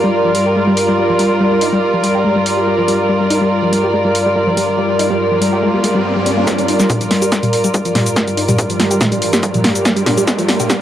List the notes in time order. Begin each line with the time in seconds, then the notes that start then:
Already playing: G2 G3 F4 A#4 D5
0.04 G3
0.25 F3
0.35 G3, open hi-hat
0.46 G4
0.56 G#3
0.67 G3
0.77 open hi-hat
0.88 G3
0.98 G3
1.09 F3
1.19 G3, open hi-hat
1.40 G3
1.52 G3
1.61 D#4, open hi-hat
1.73 G3
1.94 F3
2.04 G3, open hi-hat
2.15 G4
2.25 G#3
2.36 G3
2.46 open hi-hat
2.57 G3
2.67 G3
2.78 F3
2.88 G3, open hi-hat
3.09 G3, riser
3.20 G3
3.30 D#4, open hi-hat
3.41 G3
3.63 F3
3.73 G3, open hi-hat
3.84 G4
3.94 G#3
4.05 G3
4.15 open hi-hat
4.26 G3
4.36 G3
4.47 F3
4.57 G3, open hi-hat
4.78 G3
4.89 G3
4.99 D#4, open hi-hat
5.10 G3
5.32 F3
5.42 G3, open hi-hat
5.53 G4
5.63 G#3
5.74 G3
5.84 G#3, open hi-hat
5.95 G3
6.16 G3
6.26 G3, open hi-hat
6.37 A#3
6.47 G2 G3, kick, snare, closed hi-hat, riser, shaker
6.58 G3, closed hi-hat, shaker
6.68 D#4, open hi-hat
6.80 G3, snare, closed hi-hat, shaker
6.90 kick, closed hi-hat, mid tom, shaker
7.01 F3, closed hi-hat, shaker
7.11 G3, snare, open hi-hat
7.22 G4, closed hi-hat, shaker
7.32 G#3, kick, snare, closed hi-hat, shaker
7.43 G3, closed hi-hat, mid tom, shaker
7.53 open hi-hat
7.64 G3, closed hi-hat, shaker
7.74 G3, kick, closed hi-hat, shaker
7.85 F3, closed hi-hat, shaker
7.95 G3, snare, mid tom, open hi-hat
8.06 closed hi-hat, shaker
8.16 G3, kick, snare, closed hi-hat, shaker
8.27 G3, closed hi-hat, shaker
8.37 D#4, open hi-hat
8.48 G3, closed hi-hat, mid tom, shaker
8.59 kick, closed hi-hat, shaker
8.70 F3, closed hi-hat, shaker
8.80 G3, snare, open hi-hat
8.91 G4, closed hi-hat, shaker
9.01 G#3, kick, snare, closed hi-hat, mid tom, shaker
9.12 G3, closed hi-hat, shaker
9.22 open hi-hat
9.33 G3, snare, closed hi-hat, shaker
9.43 G3, kick, closed hi-hat, shaker
9.54 F3, closed hi-hat, mid tom, shaker
9.64 G3, snare, open hi-hat
9.75 closed hi-hat, shaker
9.85 G3, kick, snare, closed hi-hat, shaker
9.96 G3, closed hi-hat, shaker
10.06 D4, snare, mid tom, open hi-hat
10.18 G3, closed hi-hat, shaker
10.28 kick, snare, closed hi-hat, shaker
10.39 F3, closed hi-hat, shaker
10.49 G3, snare, open hi-hat
10.60 G4, closed hi-hat, mid tom, shaker
10.70 G3, kick, snare, closed hi-hat, shaker